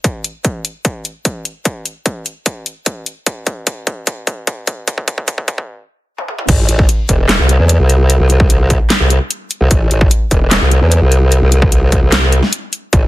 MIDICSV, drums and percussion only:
0, 0, Header, 1, 2, 480
1, 0, Start_track
1, 0, Key_signature, 0, "minor"
1, 0, Tempo, 402685
1, 51, Time_signature, 4, 2, 24, 8
1, 15585, End_track
2, 0, Start_track
2, 0, Title_t, "Drums"
2, 51, Note_on_c, 9, 36, 98
2, 51, Note_on_c, 9, 42, 71
2, 170, Note_off_c, 9, 42, 0
2, 171, Note_off_c, 9, 36, 0
2, 291, Note_on_c, 9, 42, 50
2, 410, Note_off_c, 9, 42, 0
2, 531, Note_on_c, 9, 42, 74
2, 532, Note_on_c, 9, 36, 104
2, 650, Note_off_c, 9, 42, 0
2, 651, Note_off_c, 9, 36, 0
2, 771, Note_on_c, 9, 42, 49
2, 890, Note_off_c, 9, 42, 0
2, 1011, Note_on_c, 9, 36, 106
2, 1011, Note_on_c, 9, 42, 73
2, 1130, Note_off_c, 9, 42, 0
2, 1131, Note_off_c, 9, 36, 0
2, 1251, Note_on_c, 9, 42, 51
2, 1370, Note_off_c, 9, 42, 0
2, 1491, Note_on_c, 9, 42, 75
2, 1492, Note_on_c, 9, 36, 106
2, 1610, Note_off_c, 9, 42, 0
2, 1611, Note_off_c, 9, 36, 0
2, 1731, Note_on_c, 9, 42, 54
2, 1850, Note_off_c, 9, 42, 0
2, 1971, Note_on_c, 9, 42, 76
2, 1972, Note_on_c, 9, 36, 103
2, 2090, Note_off_c, 9, 42, 0
2, 2091, Note_off_c, 9, 36, 0
2, 2211, Note_on_c, 9, 42, 53
2, 2330, Note_off_c, 9, 42, 0
2, 2451, Note_on_c, 9, 42, 73
2, 2452, Note_on_c, 9, 36, 105
2, 2571, Note_off_c, 9, 36, 0
2, 2571, Note_off_c, 9, 42, 0
2, 2692, Note_on_c, 9, 42, 50
2, 2811, Note_off_c, 9, 42, 0
2, 2931, Note_on_c, 9, 42, 77
2, 2932, Note_on_c, 9, 36, 103
2, 3050, Note_off_c, 9, 42, 0
2, 3051, Note_off_c, 9, 36, 0
2, 3171, Note_on_c, 9, 42, 54
2, 3290, Note_off_c, 9, 42, 0
2, 3411, Note_on_c, 9, 42, 80
2, 3412, Note_on_c, 9, 36, 108
2, 3530, Note_off_c, 9, 42, 0
2, 3531, Note_off_c, 9, 36, 0
2, 3651, Note_on_c, 9, 42, 54
2, 3770, Note_off_c, 9, 42, 0
2, 3892, Note_on_c, 9, 36, 105
2, 3892, Note_on_c, 9, 42, 81
2, 4011, Note_off_c, 9, 36, 0
2, 4011, Note_off_c, 9, 42, 0
2, 4131, Note_on_c, 9, 42, 56
2, 4132, Note_on_c, 9, 36, 107
2, 4251, Note_off_c, 9, 36, 0
2, 4251, Note_off_c, 9, 42, 0
2, 4371, Note_on_c, 9, 42, 83
2, 4372, Note_on_c, 9, 36, 110
2, 4491, Note_off_c, 9, 36, 0
2, 4491, Note_off_c, 9, 42, 0
2, 4612, Note_on_c, 9, 36, 103
2, 4612, Note_on_c, 9, 42, 54
2, 4731, Note_off_c, 9, 36, 0
2, 4731, Note_off_c, 9, 42, 0
2, 4851, Note_on_c, 9, 42, 80
2, 4852, Note_on_c, 9, 36, 105
2, 4971, Note_off_c, 9, 36, 0
2, 4971, Note_off_c, 9, 42, 0
2, 5091, Note_on_c, 9, 42, 58
2, 5092, Note_on_c, 9, 36, 108
2, 5210, Note_off_c, 9, 42, 0
2, 5211, Note_off_c, 9, 36, 0
2, 5331, Note_on_c, 9, 42, 79
2, 5332, Note_on_c, 9, 36, 110
2, 5451, Note_off_c, 9, 36, 0
2, 5451, Note_off_c, 9, 42, 0
2, 5571, Note_on_c, 9, 42, 54
2, 5572, Note_on_c, 9, 36, 109
2, 5690, Note_off_c, 9, 42, 0
2, 5691, Note_off_c, 9, 36, 0
2, 5812, Note_on_c, 9, 36, 103
2, 5812, Note_on_c, 9, 42, 84
2, 5931, Note_off_c, 9, 36, 0
2, 5931, Note_off_c, 9, 42, 0
2, 5932, Note_on_c, 9, 36, 90
2, 6051, Note_off_c, 9, 36, 0
2, 6051, Note_on_c, 9, 42, 57
2, 6052, Note_on_c, 9, 36, 103
2, 6171, Note_off_c, 9, 36, 0
2, 6171, Note_off_c, 9, 42, 0
2, 6172, Note_on_c, 9, 36, 95
2, 6291, Note_off_c, 9, 36, 0
2, 6291, Note_on_c, 9, 42, 81
2, 6292, Note_on_c, 9, 36, 113
2, 6411, Note_off_c, 9, 36, 0
2, 6411, Note_off_c, 9, 42, 0
2, 6412, Note_on_c, 9, 36, 97
2, 6531, Note_off_c, 9, 36, 0
2, 6531, Note_on_c, 9, 42, 56
2, 6532, Note_on_c, 9, 36, 111
2, 6651, Note_off_c, 9, 36, 0
2, 6651, Note_off_c, 9, 42, 0
2, 6652, Note_on_c, 9, 36, 95
2, 6772, Note_off_c, 9, 36, 0
2, 7372, Note_on_c, 9, 48, 53
2, 7491, Note_off_c, 9, 48, 0
2, 7491, Note_on_c, 9, 47, 83
2, 7610, Note_off_c, 9, 47, 0
2, 7612, Note_on_c, 9, 45, 86
2, 7731, Note_off_c, 9, 45, 0
2, 7731, Note_on_c, 9, 42, 84
2, 7731, Note_on_c, 9, 49, 100
2, 7732, Note_on_c, 9, 36, 122
2, 7850, Note_off_c, 9, 42, 0
2, 7850, Note_off_c, 9, 49, 0
2, 7851, Note_off_c, 9, 36, 0
2, 7971, Note_on_c, 9, 42, 56
2, 8090, Note_off_c, 9, 42, 0
2, 8092, Note_on_c, 9, 36, 109
2, 8211, Note_on_c, 9, 42, 83
2, 8212, Note_off_c, 9, 36, 0
2, 8330, Note_off_c, 9, 42, 0
2, 8451, Note_on_c, 9, 42, 57
2, 8452, Note_on_c, 9, 36, 60
2, 8570, Note_off_c, 9, 42, 0
2, 8571, Note_off_c, 9, 36, 0
2, 8691, Note_on_c, 9, 38, 119
2, 8691, Note_on_c, 9, 39, 92
2, 8691, Note_on_c, 9, 42, 78
2, 8811, Note_off_c, 9, 38, 0
2, 8811, Note_off_c, 9, 39, 0
2, 8811, Note_off_c, 9, 42, 0
2, 8931, Note_on_c, 9, 42, 57
2, 9050, Note_off_c, 9, 42, 0
2, 9171, Note_on_c, 9, 42, 85
2, 9290, Note_off_c, 9, 42, 0
2, 9411, Note_on_c, 9, 42, 59
2, 9530, Note_off_c, 9, 42, 0
2, 9651, Note_on_c, 9, 42, 80
2, 9771, Note_off_c, 9, 42, 0
2, 9891, Note_on_c, 9, 42, 52
2, 10011, Note_off_c, 9, 42, 0
2, 10013, Note_on_c, 9, 36, 111
2, 10131, Note_on_c, 9, 42, 80
2, 10132, Note_off_c, 9, 36, 0
2, 10250, Note_off_c, 9, 42, 0
2, 10372, Note_on_c, 9, 36, 65
2, 10372, Note_on_c, 9, 42, 53
2, 10491, Note_off_c, 9, 36, 0
2, 10491, Note_off_c, 9, 42, 0
2, 10612, Note_on_c, 9, 38, 124
2, 10612, Note_on_c, 9, 39, 91
2, 10612, Note_on_c, 9, 42, 82
2, 10731, Note_off_c, 9, 38, 0
2, 10731, Note_off_c, 9, 39, 0
2, 10731, Note_off_c, 9, 42, 0
2, 10852, Note_on_c, 9, 42, 55
2, 10971, Note_off_c, 9, 42, 0
2, 11092, Note_on_c, 9, 42, 83
2, 11211, Note_off_c, 9, 42, 0
2, 11332, Note_on_c, 9, 42, 56
2, 11451, Note_off_c, 9, 42, 0
2, 11572, Note_on_c, 9, 36, 127
2, 11572, Note_on_c, 9, 42, 77
2, 11691, Note_off_c, 9, 36, 0
2, 11691, Note_off_c, 9, 42, 0
2, 11812, Note_on_c, 9, 42, 53
2, 11931, Note_off_c, 9, 42, 0
2, 11933, Note_on_c, 9, 36, 115
2, 12052, Note_off_c, 9, 36, 0
2, 12052, Note_on_c, 9, 42, 77
2, 12171, Note_off_c, 9, 42, 0
2, 12291, Note_on_c, 9, 42, 52
2, 12292, Note_on_c, 9, 36, 67
2, 12411, Note_off_c, 9, 36, 0
2, 12411, Note_off_c, 9, 42, 0
2, 12531, Note_on_c, 9, 38, 123
2, 12531, Note_on_c, 9, 39, 95
2, 12531, Note_on_c, 9, 42, 77
2, 12651, Note_off_c, 9, 38, 0
2, 12651, Note_off_c, 9, 39, 0
2, 12651, Note_off_c, 9, 42, 0
2, 12772, Note_on_c, 9, 42, 53
2, 12891, Note_off_c, 9, 42, 0
2, 13012, Note_on_c, 9, 42, 81
2, 13131, Note_off_c, 9, 42, 0
2, 13251, Note_on_c, 9, 42, 54
2, 13370, Note_off_c, 9, 42, 0
2, 13491, Note_on_c, 9, 42, 75
2, 13610, Note_off_c, 9, 42, 0
2, 13731, Note_on_c, 9, 42, 54
2, 13850, Note_off_c, 9, 42, 0
2, 13852, Note_on_c, 9, 36, 115
2, 13971, Note_off_c, 9, 36, 0
2, 13971, Note_on_c, 9, 42, 75
2, 14090, Note_off_c, 9, 42, 0
2, 14211, Note_on_c, 9, 42, 50
2, 14212, Note_on_c, 9, 36, 67
2, 14330, Note_off_c, 9, 42, 0
2, 14331, Note_off_c, 9, 36, 0
2, 14450, Note_on_c, 9, 38, 124
2, 14450, Note_on_c, 9, 39, 87
2, 14450, Note_on_c, 9, 42, 75
2, 14570, Note_off_c, 9, 38, 0
2, 14570, Note_off_c, 9, 39, 0
2, 14570, Note_off_c, 9, 42, 0
2, 14691, Note_on_c, 9, 42, 53
2, 14810, Note_off_c, 9, 42, 0
2, 14811, Note_on_c, 9, 38, 39
2, 14931, Note_off_c, 9, 38, 0
2, 14931, Note_on_c, 9, 42, 77
2, 15050, Note_off_c, 9, 42, 0
2, 15171, Note_on_c, 9, 42, 50
2, 15290, Note_off_c, 9, 42, 0
2, 15411, Note_on_c, 9, 36, 123
2, 15411, Note_on_c, 9, 42, 73
2, 15530, Note_off_c, 9, 42, 0
2, 15531, Note_off_c, 9, 36, 0
2, 15585, End_track
0, 0, End_of_file